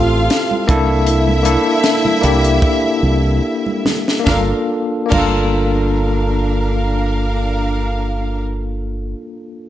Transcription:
Already playing: fingered electric bass A1, tine electric piano C4 E4 F4 G4 A4, string section F4 F5
0.30 snare, closed hi-hat
0.51 muted conga, high conga
0.68 fingered electric bass C2, tine electric piano A#3 D4 E4 A4, string section E4 E5, kick, closed hi-hat, high conga, low conga
1.07 closed hi-hat, muted conga
1.28 muted conga, high conga
1.43 tine electric piano A#3 D4 E4 A4, closed hi-hat
1.84 snare, closed hi-hat
2.05 muted conga, high conga, low conga
2.21 fingered electric bass C2, tine electric piano A#3 D4 E4 G4, closed hi-hat, low conga
2.44 closed hi-hat
2.62 kick, muted conga
2.84 muted conga
3.03 fingered electric bass C2
3.66 high conga
3.85 snare, high conga, low conga
4.08 snare
4.20 tine electric piano A#3
4.24 fingered electric bass G1, tine electric piano D4, string section D4 A#4 F5, kick, snare, high conga
4.28 tine electric piano F4
4.33 tine electric piano A4
5.06 tine electric piano A#3
5.10 fingered electric bass G1, tine electric piano D4, string section D4 A#4 F5, kick, crash, high conga
5.14 tine electric piano F4 A4

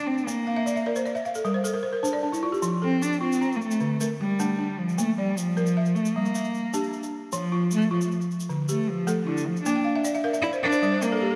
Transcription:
Already playing: balafon D4
0.07 cello C4
0.18 shaker
0.27 cello A#3, balafon A#3, shaker
0.47 balafon F5
0.56 balafon E5
0.66 balafon D5, shaker
0.76 balafon E5, shaker
0.86 balafon A#4 D5
0.96 balafon C5, shaker
1.06 balafon D5, shaker
1.15 balafon E5, shaker
1.25 balafon F5, shaker
1.35 balafon A4, shaker
1.45 balafon G3 A#4, shaker
1.54 balafon C5
1.64 balafon A4, shaker
1.74 balafon A#4
1.83 balafon C5
1.93 balafon A#4
2.03 balafon D4 C5, shaker
2.13 balafon D5
2.23 balafon D4
2.32 balafon E4, shaker
2.43 balafon F4
2.52 balafon G4, shaker
2.62 balafon F3, shaker
2.82 cello C4, balafon A4
3.02 cello D4, shaker
3.13 shaker
3.21 cello C4, balafon F4
3.32 shaker
3.41 balafon A#5, shaker
3.52 cello A#3, shaker
3.61 cello A3, shaker
3.71 shaker
3.80 balafon D3, shaker
4.00 cello A3, balafon A#4, shaker
4.20 cello G3
4.40 balafon A3 D4, shaker
4.59 balafon D4
4.78 cello F3
4.89 shaker
4.98 cello A3, balafon A#3, shaker
5.18 cello G3, balafon D5
5.37 cello F3, shaker
5.57 balafon A#4, shaker
5.67 shaker
5.77 balafon E5
5.86 shaker
5.95 cello A3, shaker
6.05 shaker
6.16 balafon G3, cello A#3
6.25 shaker
6.35 balafon E5, shaker
6.44 shaker
6.54 shaker
6.74 balafon D4 G4, shaker
6.84 shaker
6.93 shaker
7.03 shaker
7.32 balafon F3, cello F3, shaker
7.52 balafon F4
7.71 cello A3, shaker
7.82 shaker
7.91 cello F3, balafon F4
8.01 shaker
8.12 shaker
8.21 shaker
8.31 shaker
8.40 shaker
8.49 balafon D3, shaker
8.69 cello A3, balafon G4, shaker
8.89 cello F3
9.07 balafon A3 A4, shaker
9.26 cello D3, balafon E4
9.37 shaker
9.46 cello F3
9.56 shaker
9.64 balafon A#3, cello D4, shaker
9.76 balafon G5
9.84 balafon F5
9.96 balafon E5
10.05 balafon D5, shaker
10.14 balafon E5, shaker
10.24 balafon A#4 F5
10.33 balafon E5, shaker
10.42 cello E4, balafon D5, shaker
10.53 balafon C5, shaker
10.63 cello D4, balafon A#4
10.72 balafon C5, shaker
10.82 balafon G3 D5, shaker
10.92 balafon C5
11.02 cello A#3, balafon A#4, shaker
11.12 balafon A4
11.21 balafon G4
11.31 balafon A4

